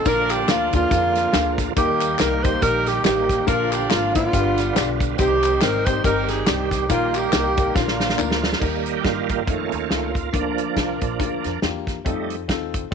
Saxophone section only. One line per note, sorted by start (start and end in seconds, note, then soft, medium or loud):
0.07 0.73 D4 medium
0.07 0.49 F4 medium
0.07 0.31 A#4 loud
0.31 0.49 G4 medium
0.50 0.73 F4 medium
0.74 1.55 A#3 medium
0.74 1.55 D4 medium
0.74 1.55 F4 loud
1.78 2.59 A#3 medium
1.78 2.59 D#4 medium
1.78 2.17 G4 medium
2.19 2.44 A#4 loud
2.44 2.62 C5 medium
2.62 3.04 D#4 medium
2.62 2.85 G4 medium
2.62 2.87 A#4 medium
2.87 3.04 G4 medium
3.05 3.45 A#3 medium
3.05 3.45 D#4 medium
3.05 3.45 G4 medium
3.48 4.15 D4 medium
3.48 3.89 F4 medium
3.48 3.71 A#4 medium
3.72 3.91 G4 medium
3.90 4.15 F4 medium
4.16 4.97 B3 medium
4.16 4.97 D4 medium
4.16 4.97 F4 loud
5.19 6.01 C4 medium
5.19 6.01 D#4 medium
5.19 5.59 G4 loud
5.62 5.87 A#4 loud
5.86 6.04 C5 medium
6.05 6.46 D#4 medium
6.05 6.46 G4 medium
6.05 6.28 A#4 loud
6.29 6.47 G#4 medium
6.47 6.87 C4 medium
6.47 6.87 D#4 medium
6.47 6.90 G4 medium
6.90 7.14 A#3 medium
6.90 7.13 F4 medium
7.15 7.72 A#3 medium
7.15 7.72 D#4 medium
7.15 7.76 G4 medium
7.75 8.58 A#3 medium
7.75 8.58 D4 medium
7.75 8.19 F4 medium